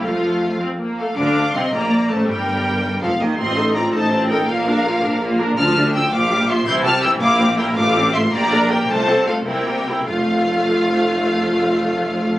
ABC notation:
X:1
M:6/8
L:1/8
Q:3/8=108
K:F
V:1 name="Violin section"
f3 z2 f | [K:Bb] d'2 c' b2 a | g4 f e | c'2 b a2 g |
f4- f z | [K:F] f'2 e' d'2 c' | g' f' e' d'2 g | d'2 c' b2 g |
a2 f g3 | f6- | f6 |]
V:2 name="Violin section"
F3 z2 A | [K:Bb] f2 e d2 c | B4 A G | e2 d c2 B |
B4- B z | [K:F] a2 g f2 e | c' a g f2 B | f2 e d2 B |
c2 A B3 | F6- | F6 |]
V:3 name="Viola section"
[A,F]3 C B, A, | [K:Bb] D2 C B,2 A, | G,4 F, E, | [CF] [EA] [CF] [EA] [CF] [EA] |
[B,F] [DB] [B,F] [DB] [B,F] [DB] | [K:F] [F,F] [A,D] [F,F] [F,F] [G,G] [F,F] | [E,E] [G,G] [E,E] [B,E] [CG] [B,E] | [A,F] [CA] [A,F] [B,G] [DB] [B,G] |
[A,F] [CA] [A,F] [CE] [B,G] [CE] | [A,F]6- | [A,F]6 |]
V:4 name="Cello section" clef=bass
F,3 z3 | [K:Bb] D,2 C, B,,2 A,, | G,,4 F,, E,, | A,,3 A,,3 |
B,,3 B,,3 | [K:F] D,3 B,,3 | C,3 B,,3 | A,,3 B,,3 |
C,3 C,3 | F,,6- | F,,6 |]
V:5 name="Double bass section" clef=bass
F,,4- F,, z | [K:Bb] D,,2 C,, B,,,2 A,,, | G,,,4 F,,, E,, | A,,,3 A,,,3 |
B,,,3 B,,,3 | [K:F] D,,3 B,,,3 | C,,3 B,,,3 | A,,,3 B,,,3 |
C,,3 C,,3 | F,,,6- | F,,,6 |]